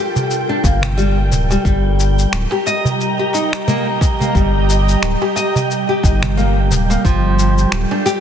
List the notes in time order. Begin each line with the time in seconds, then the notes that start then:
Already playing: G3 F4 G4 A4 A#4 G5
0.16 darbuka dum, cabasa
0.31 cabasa
0.49 D4
0.64 G1 A#3, kick, darbuka tek, cabasa
0.81 finger snap, darbuka dum, cabasa
0.97 G3, cabasa
1.16 darbuka ka
1.31 D1, darbuka dum, cabasa
1.50 G3, darbuka ka, darbuka tek, cabasa
1.65 G1 G3, kick, cabasa
1.78 G4
1.90 A#5
2.00 cabasa
2.19 cabasa
2.33 D1, finger snap, cabasa
2.44 D#5
2.51 G4, darbuka tek
2.66 D#5, darbuka ka, cabasa
2.85 darbuka dum, cabasa
3.01 cabasa
3.19 G4
3.33 D#4, darbuka tek, cabasa
3.53 finger snap, darbuka ka, cabasa
3.67 A#3, darbuka dum, cabasa
4.01 kick, darbuka tek, cabasa
4.20 A#3, darbuka ka, darbuka dum, cabasa
4.35 G1 G3, kick, cabasa
4.70 cabasa
4.89 cabasa
5.02 D1, finger snap, cabasa
5.22 G4, darbuka tek
5.36 D#5, darbuka ka, darbuka tek, cabasa
5.55 darbuka dum, cabasa
5.71 cabasa
5.89 G4
6.03 G1 D#4, kick, darbuka tek, cabasa
6.23 finger snap, darbuka dum, cabasa
6.37 A#3, cabasa
6.56 darbuka ka
6.71 D1, darbuka dum, cabasa
6.90 A#3, darbuka ka, darbuka tek, cabasa
7.05 G1 F3, kick, cabasa
7.23 F4 A4
7.34 A#4
7.39 cabasa
7.58 cabasa
7.72 D1, finger snap, cabasa
7.91 D4, darbuka tek
8.06 G4, darbuka ka, cabasa